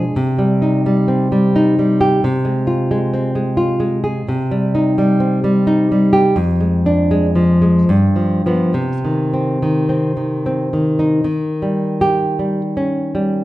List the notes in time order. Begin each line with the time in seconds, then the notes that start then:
Already playing: B2 G#3 D4 G#4
0.16 C3
0.39 G3
0.62 D#4
0.86 G3
1.08 C4
1.32 G3
1.56 D#4
1.79 G3
2.01 G4
2.24 C3
2.45 G#3
2.67 F4
2.91 G#3
3.14 C4
3.35 G#3
3.57 F4
3.80 G#3
4.04 G#4
4.28 C3
4.51 G3
4.75 D#4
4.98 G3
5.20 C4
5.44 G3
5.67 D#4
5.92 G3
6.13 G4
6.36 F2
6.60 G#3
6.86 D4
7.11 G#3
7.35 F3
7.62 G#3
7.89 G2
8.16 F3
8.46 F3 B3
8.74 C3
9.05 D#3
9.34 C4
9.62 D#3
9.89 C4
10.17 D#3
10.46 C4
10.73 D#3
10.99 D#4
11.24 D#3
11.62 G3
12.01 G4
12.39 G3
12.77 C#4
13.15 G3